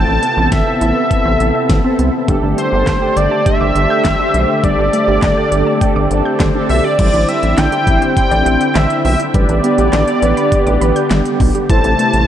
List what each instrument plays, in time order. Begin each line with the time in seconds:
Already playing: analog synth pad C3 B3 A4, analog polysynth C4 E4 A4, analog synth lead A5
0.08 analog synth bass A1, synth arpeggio sound C4
0.23 synth arpeggio sound B3, closed hi-hat
0.37 analog synth bass A1, analog polysynth C4 E4 A4, synth arpeggio sound E4
0.52 analog synth bass A1, synth arpeggio sound C4, analog synth lead E5, kick, snare, closed hi-hat
0.67 analog polysynth C4 E4 A4, synth arpeggio sound A4
0.81 analog synth bass A1, synth arpeggio sound E4, analog synth lead E5, closed hi-hat
0.96 synth arpeggio sound B4
1.11 analog polysynth C4 E4 A4, synth arpeggio sound A4, kick, closed hi-hat
1.25 analog synth bass A1, synth arpeggio sound C5
1.40 analog synth bass A1, analog polysynth C4 E4 A4, closed hi-hat
1.55 synth arpeggio sound E5
1.69 analog synth bass A1, kick, snare, closed hi-hat
1.84 analog polysynth C4 E4 A4, synth arpeggio sound C4
1.99 analog synth bass C2, synth arpeggio sound B3, closed hi-hat
2.14 synth arpeggio sound E4
2.28 analog synth bass G1, analog synth pad D3 A3 G4, synth arpeggio sound G3, analog polysynth D4 G4 A4, kick, closed hi-hat, swell
2.43 analog synth bass G1, synth arpeggio sound D4
2.58 synth arpeggio sound A3, analog synth lead C5, closed hi-hat
2.73 analog synth bass G1, analog polysynth D4 G4 A4, synth arpeggio sound G4
2.87 analog synth bass G1, synth arpeggio sound D4, kick, snare, clap, closed hi-hat
3.02 analog polysynth D4 G4 A4, synth arpeggio sound G5
3.17 analog synth bass G1, synth arpeggio sound G4, analog synth lead D5, closed hi-hat
3.31 synth arpeggio sound A5
3.46 analog polysynth D4 G4 A4, analog synth lead E5, synth arpeggio sound G5, kick, closed hi-hat
3.61 analog synth bass G1, synth arpeggio sound D6
3.75 analog synth bass G1, analog polysynth D4 G4 A4, closed hi-hat
3.90 synth arpeggio sound G6
4.05 analog synth bass G1, kick, snare, clap, closed hi-hat
4.20 synth arpeggio sound D4, analog polysynth D4 G4 C5
4.34 analog synth bass B1, synth arpeggio sound A3, closed hi-hat
4.49 synth arpeggio sound G4
4.64 analog synth bass G1, synth arpeggio sound G3, analog polysynth D4 G4 A4, analog synth lead D5, kick, closed hi-hat
4.78 analog synth bass G1, synth arpeggio sound D4
4.93 synth arpeggio sound A3, closed hi-hat
5.08 analog synth bass G1, analog polysynth D4 G4 A4, synth arpeggio sound G4
5.22 analog synth bass G1, synth arpeggio sound D4, kick, snare, clap, closed hi-hat
5.37 analog polysynth D4 G4 A4, synth arpeggio sound G5
5.52 analog synth bass G1, synth arpeggio sound G4, closed hi-hat
5.67 synth arpeggio sound A5
5.81 analog polysynth D4 G4 A4, synth arpeggio sound G5, kick, closed hi-hat
5.96 analog synth bass G1, synth arpeggio sound D6
6.11 analog synth bass G1, analog polysynth D4 G4 A4, closed hi-hat
6.25 synth arpeggio sound G6
6.40 analog synth bass G1, kick, snare, clap, closed hi-hat
6.55 synth arpeggio sound D4, analog polysynth D4 G4 A4
6.69 analog synth bass B1, synth arpeggio sound A3, analog synth lead E5, open hi-hat
6.84 synth arpeggio sound G4, analog synth lead D5
6.99 analog synth bass A1, analog synth pad D3 C4 E4, synth arpeggio sound G3, analog polysynth E4 G4 C5, analog synth lead D5, kick, closed hi-hat, crash
7.13 analog synth bass A1, synth arpeggio sound D4, closed hi-hat
7.28 synth arpeggio sound C4, analog synth lead E5, closed hi-hat
7.43 analog synth bass A1, synth arpeggio sound E4, closed hi-hat
7.58 analog synth bass A1, synth arpeggio sound D4, analog polysynth E4 G4 C5, analog synth lead G5, snare, clap, closed hi-hat
7.72 synth arpeggio sound G4, closed hi-hat
7.87 analog synth bass A1, synth arpeggio sound E4, analog polysynth E4 G4 C5, kick, closed hi-hat
8.02 synth arpeggio sound C5, closed hi-hat
8.17 analog synth lead G5, kick, closed hi-hat
8.31 analog synth bass A1, synth arpeggio sound D5, closed hi-hat
8.46 analog synth bass A1, synth arpeggio sound C5, closed hi-hat
8.61 synth arpeggio sound E5, closed hi-hat
8.75 analog synth bass A1, synth arpeggio sound G3, analog synth lead E5, snare, clap, closed hi-hat
8.90 closed hi-hat
9.05 analog synth bass B1, synth arpeggio sound C4, analog synth lead E5, open hi-hat
9.19 synth arpeggio sound E4, closed hi-hat
9.34 analog synth bass A1, analog synth pad D3 B3 G4, synth arpeggio sound G3, analog polysynth D4 G4 B4, analog synth lead D5, kick, closed hi-hat
9.49 analog synth bass A1, synth arpeggio sound D4, closed hi-hat
9.64 synth arpeggio sound B3, analog polysynth D4 G4 B4, closed hi-hat
9.78 analog synth bass A1, synth arpeggio sound G4, closed hi-hat
9.93 analog synth bass A1, synth arpeggio sound D4, snare, clap, closed hi-hat
10.08 synth arpeggio sound G5, closed hi-hat
10.22 analog synth bass A1, analog polysynth D4 G4 B4, synth arpeggio sound G4, closed hi-hat
10.37 synth arpeggio sound B5, closed hi-hat
10.52 kick, closed hi-hat
10.67 analog synth bass A1, synth arpeggio sound D6, closed hi-hat
10.81 analog synth bass A1, synth arpeggio sound B5, closed hi-hat
10.96 synth arpeggio sound G6, closed hi-hat
11.11 analog synth bass G1, synth arpeggio sound G3, snare, clap, closed hi-hat
11.25 closed hi-hat
11.40 analog synth bass B1, synth arpeggio sound B3, kick, open hi-hat
11.55 synth arpeggio sound G4, closed hi-hat
11.69 analog synth bass A1, analog synth pad C3 A3 E4, synth arpeggio sound E3, analog polysynth E4 A4 C5, analog synth lead A5, kick, closed hi-hat
11.84 analog synth bass A1, synth arpeggio sound C4, closed hi-hat
11.99 synth arpeggio sound A3, closed hi-hat
12.13 analog synth bass A1, synth arpeggio sound E4, closed hi-hat